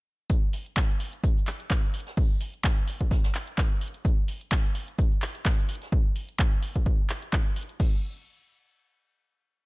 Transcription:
0.30 kick loud
0.30 closed hi-hat medium
0.53 closed hi-hat medium
0.53 open hi-hat loud
0.66 closed hi-hat medium
0.76 kick loud
0.76 snare loud
0.76 clap loud
0.76 closed hi-hat medium
0.76 closed hi-hat soft
1.00 closed hi-hat medium
1.00 open hi-hat loud
1.13 closed hi-hat medium
1.23 kick loud
1.23 closed hi-hat medium
1.37 closed hi-hat soft
1.47 clap medium
1.47 closed hi-hat medium
1.47 open hi-hat loud
1.60 closed hi-hat medium
1.70 kick loud
1.70 snare loud
1.70 clap loud
1.70 closed hi-hat medium
1.83 closed hi-hat soft
1.94 closed hi-hat medium
1.94 open hi-hat loud
2.00 closed hi-hat medium
2.07 snare soft
2.07 closed hi-hat medium
2.17 kick loud
2.17 closed hi-hat medium
2.17 open hi-hat medium
2.41 closed hi-hat medium
2.41 open hi-hat loud
2.54 closed hi-hat medium
2.64 kick loud
2.64 snare loud
2.64 clap loud
2.64 closed hi-hat soft
2.64 closed hi-hat medium
2.77 closed hi-hat soft
2.88 closed hi-hat medium
2.88 open hi-hat loud
3.01 kick medium
3.01 closed hi-hat medium
3.11 kick loud
3.11 snare loud
3.11 closed hi-hat medium
3.24 snare loud
3.24 closed hi-hat medium
3.34 clap medium
3.34 closed hi-hat medium
3.34 open hi-hat loud
3.47 closed hi-hat medium
3.58 kick loud
3.58 snare loud
3.58 clap loud
3.58 closed hi-hat medium
3.81 closed hi-hat medium
3.81 open hi-hat loud
3.88 closed hi-hat medium
3.94 closed hi-hat medium
4.05 kick loud
4.05 closed hi-hat medium
4.28 closed hi-hat medium
4.28 open hi-hat loud
4.41 closed hi-hat medium
4.51 kick loud
4.51 snare loud
4.51 clap loud
4.51 closed hi-hat loud
4.51 closed hi-hat soft
4.75 closed hi-hat medium
4.75 open hi-hat loud
4.88 closed hi-hat soft
4.98 kick loud
4.98 closed hi-hat medium
5.11 closed hi-hat soft
5.22 clap medium
5.22 closed hi-hat medium
5.22 open hi-hat loud
5.35 closed hi-hat medium
5.45 kick loud
5.45 snare loud
5.45 clap loud
5.45 closed hi-hat medium
5.59 closed hi-hat soft
5.69 closed hi-hat medium
5.69 open hi-hat loud
5.75 closed hi-hat medium
5.82 snare soft
5.82 closed hi-hat medium
5.92 kick loud
5.92 closed hi-hat medium
6.16 open hi-hat loud
6.29 closed hi-hat medium
6.39 kick loud
6.39 clap loud
6.39 closed hi-hat soft
6.63 open hi-hat loud
6.76 kick medium
6.76 closed hi-hat medium
6.86 kick loud
6.86 closed hi-hat medium
7.09 clap medium
7.09 open hi-hat loud
7.22 closed hi-hat medium
7.33 kick loud
7.33 clap loud
7.33 closed hi-hat medium
7.56 open hi-hat loud
7.63 closed hi-hat medium
7.69 closed hi-hat medium
7.80 kick loud
7.80 crash medium

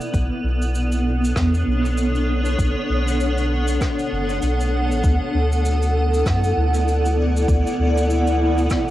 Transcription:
0.00 5.02 B3 medium
0.00 1.51 E4 loud
0.00 0.14 A4 medium
0.00 0.14 D5 medium
0.00 0.14 F#5 loud
0.00 cabasa medium
0.14 0.29 B1 loud
0.14 kick loud
0.14 cabasa medium
0.42 1.33 B1 loud
0.42 7.01 D4 medium
0.42 8.90 A4 medium
0.62 cabasa medium
0.75 cabasa medium
0.92 cabasa soft
1.07 5.03 C#5 medium
1.24 cabasa medium
1.36 1.64 E2 medium
1.36 kick loud
1.36 cross-stick loud
1.36 cabasa medium
1.54 cabasa soft
1.67 2.56 B1 medium
1.85 cabasa medium
1.98 8.90 F#5 medium
1.98 cabasa medium
2.15 cabasa soft
2.45 cabasa medium
2.59 2.74 B1 loud
2.59 kick loud
2.59 cabasa medium
2.89 3.79 B1 loud
3.08 cabasa medium
3.20 cabasa medium
3.38 cabasa soft
3.68 cabasa medium
3.81 kick loud
3.81 cross-stick medium
3.81 cabasa medium
3.99 cabasa soft
4.12 4.39 F#1 medium
4.29 cabasa medium
4.42 4.92 B1 medium
4.42 cabasa medium
4.60 cabasa soft
4.91 5.02 A1 loud
4.91 cabasa medium
5.03 5.19 D2 loud
5.03 8.90 B3 medium
5.03 kick loud
5.03 cabasa medium
5.34 6.24 D2 loud
5.46 8.90 E4 medium
5.52 cabasa medium
5.65 cabasa medium
5.82 cabasa soft
6.14 cabasa medium
6.26 6.54 F#2 medium
6.26 8.90 D5 medium
6.26 kick loud
6.26 cross-stick medium
6.26 cabasa medium
6.44 cabasa soft
6.57 7.46 D2 medium
6.74 cabasa medium
6.88 cabasa medium
7.05 cabasa soft
7.37 cabasa medium
7.48 7.64 D2 loud
7.48 kick loud
7.48 cabasa medium
7.67 cabasa medium
7.79 8.68 D2 medium
7.98 cabasa medium
8.10 cabasa medium
8.27 cabasa soft
8.58 cabasa medium
8.70 kick loud
8.70 cross-stick medium
8.70 cabasa medium

